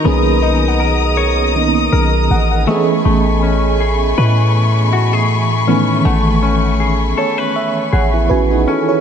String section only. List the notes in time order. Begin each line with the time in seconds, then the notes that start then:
Already playing: A#4 D#5 A#5
0.05 D#6
2.68 A3 G#5 B5 C#6